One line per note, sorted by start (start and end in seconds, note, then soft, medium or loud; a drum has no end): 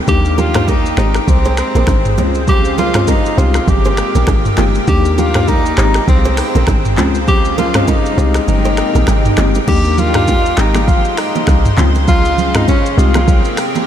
0.08 0.94 D#2 loud
0.08 0.97 D#3 medium
0.08 0.51 A#3 medium
0.08 0.97 A#3 medium
0.08 0.51 D4 medium
0.08 0.51 D#4 medium
0.08 2.16 G4 medium
0.08 0.51 G4 loud
0.08 0.40 G4 loud
0.08 0.97 D5 medium
0.08 kick loud
0.08 low conga medium
0.08 shaker medium
0.25 shaker medium
0.38 0.70 F4 loud
0.38 0.50 G4 medium
0.38 0.49 A#4 medium
0.38 low bongo medium
0.38 low conga medium
0.38 shaker medium
0.54 0.71 A#3 medium
0.54 0.72 D4 medium
0.54 0.72 D#4 medium
0.54 0.72 G4 medium
0.54 0.64 G#4 medium
0.54 0.64 C5 medium
0.54 finger snap medium
0.54 cross-stick loud
0.54 mid tom medium
0.54 shaker soft
0.68 0.98 D#4 medium
0.68 0.80 G4 medium
0.68 0.80 A#4 medium
0.68 kick medium
0.68 high bongo medium
0.68 shaker medium
0.86 shaker medium
0.97 1.20 G#1 loud
0.97 1.18 G#3 medium
0.97 4.84 G#3 medium
0.97 1.18 C4 medium
0.97 3.35 C4 medium
0.97 1.18 D#4 medium
0.97 1.30 D#4 medium
0.97 1.18 G4 medium
0.97 1.10 G#4 medium
0.97 1.10 C5 medium
0.97 finger snap medium
0.97 cross-stick medium
0.97 shaker medium
1.14 finger snap medium
1.14 cross-stick medium
1.14 shaker medium
1.28 1.62 C2 medium
1.28 1.58 C4 medium
1.28 kick loud
1.28 low conga medium
1.28 shaker medium
1.45 1.54 G#4 medium
1.45 1.54 C5 medium
1.45 shaker soft
1.57 2.14 C4 medium
1.57 finger snap medium
1.57 cross-stick medium
1.57 shaker medium
1.75 1.84 A#1 medium
1.75 1.84 G4 medium
1.75 1.84 A#4 medium
1.75 low bongo medium
1.75 shaker medium
1.87 2.19 G#1 loud
1.87 2.00 D#4 medium
1.87 2.00 G#4 medium
1.87 finger snap medium
1.87 kick loud
1.87 cross-stick medium
1.87 high bongo medium
1.87 shaker medium
2.05 mid tom medium
2.05 shaker medium
2.17 3.05 C#2 loud
2.17 3.37 C#3 medium
2.17 2.38 G#3 medium
2.17 2.38 C4 medium
2.17 2.38 C#4 medium
2.17 2.30 C#4 medium
2.17 3.37 F4 medium
2.17 2.38 F4 medium
2.17 2.30 F4 medium
2.17 low bongo medium
2.17 shaker medium
2.35 shaker soft
2.48 2.76 G4 loud
2.48 kick loud
2.48 low conga medium
2.48 shaker medium
2.65 shaker medium
2.78 3.10 F4 loud
2.78 2.90 G4 medium
2.78 2.90 A#4 medium
2.78 low bongo medium
2.78 low conga medium
2.78 shaker medium
2.94 3.11 G#3 medium
2.94 3.11 C4 medium
2.94 3.11 C#4 medium
2.94 3.12 F4 medium
2.94 3.04 G#4 medium
2.94 3.04 C5 medium
2.94 finger snap medium
2.94 cross-stick loud
2.94 mid tom medium
2.94 shaker medium
3.08 3.40 D#4 medium
3.08 3.20 F4 medium
3.08 3.20 A#4 medium
3.08 kick medium
3.08 high bongo medium
3.08 shaker medium
3.26 shaker medium
3.38 3.60 C2 loud
3.38 4.86 C3 medium
3.38 3.58 G#3 medium
3.38 5.75 A#3 medium
3.38 3.58 C4 medium
3.38 3.58 D#4 medium
3.38 3.70 F4 loud
3.38 5.76 G4 medium
3.38 3.58 G4 medium
3.38 3.50 G#4 medium
3.38 3.50 C5 medium
3.38 shaker medium
3.54 finger snap medium
3.54 cross-stick medium
3.54 shaker medium
3.68 4.02 G1 medium
3.68 4.58 G4 loud
3.68 kick loud
3.68 low conga medium
3.68 shaker medium
3.85 3.94 G#4 medium
3.85 3.94 C5 medium
3.85 shaker medium
3.97 finger snap medium
3.97 cross-stick medium
3.97 shaker medium
4.15 4.24 A#1 medium
4.15 4.24 G4 medium
4.15 4.24 A#4 medium
4.15 low bongo medium
4.15 shaker medium
4.27 4.50 G#1 medium
4.27 4.40 D#4 medium
4.27 4.40 G#4 medium
4.27 finger snap medium
4.27 kick loud
4.27 cross-stick medium
4.27 high bongo medium
4.27 shaker medium
4.45 mid tom medium
4.45 shaker medium
4.57 4.80 G1 medium
4.57 4.78 G#3 medium
4.57 4.78 C4 medium
4.57 4.70 D4 medium
4.57 4.78 D#4 medium
4.57 4.70 F4 medium
4.57 4.78 G4 medium
4.57 finger snap medium
4.57 cross-stick medium
4.57 clap medium
4.57 low bongo medium
4.57 shaker medium
4.75 shaker soft
4.87 5.74 D#2 loud
4.87 5.77 D#3 medium
4.87 5.31 A#3 medium
4.87 5.31 D4 medium
4.87 5.31 D#4 medium
4.87 5.31 G4 loud
4.87 5.20 G4 loud
4.87 5.77 D5 medium
4.87 kick loud
4.87 low conga medium
4.87 shaker medium
5.05 shaker medium
5.18 5.50 F4 loud
5.18 5.30 G4 medium
5.18 5.30 A#4 medium
5.18 low bongo medium
5.18 low conga medium
5.18 shaker medium
5.34 5.51 A#3 medium
5.34 5.51 D4 medium
5.34 5.51 D#4 medium
5.34 5.52 G4 medium
5.34 5.44 G#4 medium
5.34 5.44 C5 medium
5.34 finger snap medium
5.34 cross-stick loud
5.34 mid tom loud
5.34 shaker medium
5.48 5.78 D#4 loud
5.48 5.60 G4 medium
5.48 5.60 A#4 medium
5.48 kick loud
5.48 high bongo medium
5.48 shaker medium
5.66 shaker medium
5.77 6.00 G#1 loud
5.77 5.98 G#3 medium
5.77 9.64 G#3 medium
5.77 5.98 C4 medium
5.77 8.16 C4 medium
5.77 5.98 D#4 medium
5.77 6.06 D#4 medium
5.77 6.97 G4 medium
5.77 5.98 G4 medium
5.77 5.90 G#4 medium
5.77 5.90 C5 medium
5.77 finger snap medium
5.77 cross-stick loud
5.77 clap medium
5.77 shaker medium
5.94 finger snap medium
5.94 cross-stick medium
5.94 shaker medium
6.08 6.42 C2 medium
6.08 6.36 C4 medium
6.08 kick loud
6.08 low conga medium
6.08 shaker medium
6.25 6.34 G#4 medium
6.25 6.34 C5 medium
6.25 shaker medium
6.37 6.94 C4 medium
6.37 finger snap medium
6.37 cross-stick medium
6.37 open hi-hat medium
6.37 shaker medium
6.55 6.64 A#1 medium
6.55 6.64 G4 medium
6.55 6.64 A#4 medium
6.55 low bongo medium
6.55 shaker medium
6.67 6.99 G#1 loud
6.67 6.80 D#4 medium
6.67 6.80 G#4 medium
6.67 finger snap medium
6.67 kick loud
6.67 cross-stick medium
6.67 high bongo medium
6.67 shaker medium
6.85 mid tom medium
6.85 shaker medium
6.98 7.85 C#2 loud
6.98 8.17 C#3 medium
6.98 7.18 G#3 medium
6.98 7.18 C4 medium
6.98 7.18 C#4 medium
6.98 7.10 C#4 medium
6.98 8.17 F4 medium
6.98 7.10 F4 medium
6.98 7.18 F4 medium
6.98 clap medium
6.98 low bongo medium
6.98 shaker medium
7.15 shaker soft
7.28 7.56 G4 loud
7.28 kick loud
7.28 swell medium
7.28 low conga medium
7.28 shaker medium
7.45 shaker medium
7.58 7.90 F4 loud
7.58 7.70 G4 medium
7.58 7.69 A#4 medium
7.58 low bongo medium
7.58 low conga medium
7.58 shaker medium
7.74 7.91 G#3 medium
7.74 7.91 C4 medium
7.74 7.92 C#4 medium
7.74 7.92 F4 medium
7.74 7.84 G#4 medium
7.74 7.84 C5 medium
7.74 finger snap medium
7.74 cross-stick loud
7.74 mid tom medium
7.74 shaker medium
7.88 8.48 D#4 medium
7.88 8.00 F4 medium
7.88 7.99 A#4 medium
7.88 kick medium
7.88 high bongo medium
7.88 shaker medium
8.06 shaker medium
8.17 8.40 C2 loud
8.17 9.66 C3 medium
8.17 8.38 G#3 medium
8.17 9.66 A#3 medium
8.17 8.38 C4 medium
8.17 8.38 D#4 medium
8.17 8.38 G4 medium
8.17 9.66 G4 medium
8.17 8.30 G#4 medium
8.17 8.29 C5 medium
8.17 shaker medium
8.34 finger snap medium
8.34 cross-stick medium
8.34 shaker medium
8.48 8.82 G1 medium
8.48 9.34 D#4 medium
8.48 low conga medium
8.48 shaker medium
8.65 8.74 G#4 medium
8.65 8.74 C5 medium
8.65 shaker medium
8.77 finger snap medium
8.77 cross-stick medium
8.77 shaker medium
8.95 9.04 A#1 loud
8.95 9.04 G4 medium
8.95 9.04 A#4 medium
8.95 low bongo medium
8.95 shaker medium
9.07 9.30 G#1 loud
9.07 9.20 D#4 medium
9.07 9.19 G#4 medium
9.07 finger snap medium
9.07 cross-stick medium
9.07 high bongo medium
9.07 shaker medium
9.25 mid tom medium
9.25 shaker medium
9.37 9.60 G1 medium
9.37 9.58 G#3 medium
9.37 9.58 C4 medium
9.37 9.50 D4 medium
9.37 9.58 D#4 medium
9.37 9.50 F4 medium
9.37 9.58 G4 medium
9.37 finger snap medium
9.37 cross-stick medium
9.37 clap medium
9.37 high bongo medium
9.37 low bongo medium
9.37 shaker medium
9.55 high bongo medium
9.55 shaker soft
9.67 10.54 D#2 loud
9.67 10.57 D#3 medium
9.67 10.11 A#3 loud
9.67 10.57 A#3 medium
9.67 10.11 D4 medium
9.67 10.11 D#4 medium
9.67 11.76 G4 medium
9.67 10.11 G4 loud
9.67 10.00 G4 loud
9.67 10.57 D5 medium
9.67 kick loud
9.67 crash loud
9.67 low conga medium
9.67 shaker medium
9.85 shaker medium
9.98 10.60 F4 loud
9.98 low conga medium
9.98 shaker medium
10.14 10.31 A#3 medium
10.14 10.31 D4 medium
10.14 10.32 D#4 medium
10.14 10.32 G4 medium
10.14 finger snap medium
10.14 cross-stick loud
10.14 mid tom loud
10.14 shaker medium
10.28 kick loud
10.28 high bongo medium
10.28 shaker medium
10.46 shaker medium
10.57 11.02 G#1 loud
10.57 10.78 G#3 medium
10.57 13.87 G#3 medium
10.57 10.78 C4 medium
10.57 10.78 D#4 medium
10.57 10.90 D#4 loud
10.57 10.78 G4 medium
10.57 12.96 C5 medium
10.57 finger snap medium
10.57 cross-stick medium
10.57 clap loud
10.57 shaker medium
10.75 finger snap medium
10.75 cross-stick medium
10.75 low bongo medium
10.75 shaker medium
10.88 11.20 F4 loud
10.88 kick loud
10.88 low conga medium
10.88 shaker medium
11.05 shaker medium
11.17 11.78 D#4 medium
11.17 finger snap medium
11.17 cross-stick loud
11.17 open hi-hat medium
11.17 shaker medium
11.35 low bongo medium
11.35 shaker medium
11.47 11.70 C2 medium
11.47 finger snap medium
11.47 kick loud
11.47 cross-stick loud
11.47 high bongo medium
11.47 shaker medium
11.65 mid tom loud
11.65 shaker medium
11.77 12.78 C#2 loud
11.77 12.97 C#3 medium
11.77 11.98 G#3 medium
11.77 11.98 C4 medium
11.77 11.98 C#4 medium
11.77 12.97 F4 medium
11.77 11.98 F4 medium
11.77 clap medium
11.77 low bongo medium
11.77 shaker medium
11.95 high bongo medium
11.95 shaker soft
12.08 12.58 F4 loud
12.08 kick loud
12.08 low conga medium
12.08 shaker medium
12.25 shaker medium
12.38 low conga medium
12.38 shaker medium
12.54 12.71 G#3 medium
12.54 12.71 C4 medium
12.54 12.71 C#4 medium
12.54 12.68 D#4 loud
12.54 12.72 F4 medium
12.54 finger snap medium
12.54 cross-stick loud
12.54 mid tom medium
12.54 shaker medium
12.68 13.01 C#4 medium
12.68 kick loud
12.68 high bongo medium
12.68 shaker medium
12.86 shaker medium
12.97 13.42 C2 loud
12.97 13.87 C3 medium
12.97 13.18 G#3 medium
12.97 13.87 A#3 medium
12.97 13.18 C4 medium
12.97 13.18 D#4 medium
12.97 13.58 F4 loud
12.97 13.18 G4 medium
12.97 13.87 G4 medium
12.97 shaker medium
13.14 finger snap medium
13.14 cross-stick medium
13.14 low bongo medium
13.14 shaker medium
13.28 kick loud
13.28 low conga medium
13.28 shaker medium
13.45 shaker medium
13.57 finger snap medium
13.57 cross-stick medium
13.57 open hi-hat medium
13.57 shaker medium
13.75 low bongo medium
13.75 shaker medium